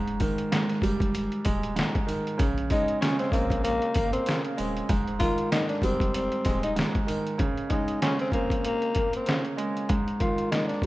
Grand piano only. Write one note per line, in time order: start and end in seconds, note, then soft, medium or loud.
0.00 0.50 G#2 loud
0.20 1.45 D#3 medium
0.52 1.75 G#2 medium
0.83 2.08 G3 medium
1.45 2.39 G#3 medium
1.76 2.39 G#2 medium
2.07 2.39 D#3 medium
2.38 3.00 C#3 loud
2.72 3.96 G#3 medium
3.02 4.25 C#3 medium
3.34 4.59 C4 medium
3.97 4.90 A#3 medium
4.27 4.89 C#3 medium
4.57 4.89 G#3 medium
4.89 5.51 G#2 loud
5.20 6.45 D#3 medium
5.52 6.75 G#2 medium
5.83 7.08 G3 medium
6.45 7.39 G#3 medium
6.76 7.39 G#2 medium
7.07 7.39 D#3 medium
7.38 8.01 C#3 medium
7.72 8.96 G#3 medium
8.02 9.26 C#3 medium
8.34 9.59 C4 medium
8.97 9.90 A#3 medium
9.27 9.90 C#3 medium
9.57 9.89 G#3 medium
9.89 10.51 G#2 medium
10.20 10.86 D#3 medium
10.52 10.86 G#2 medium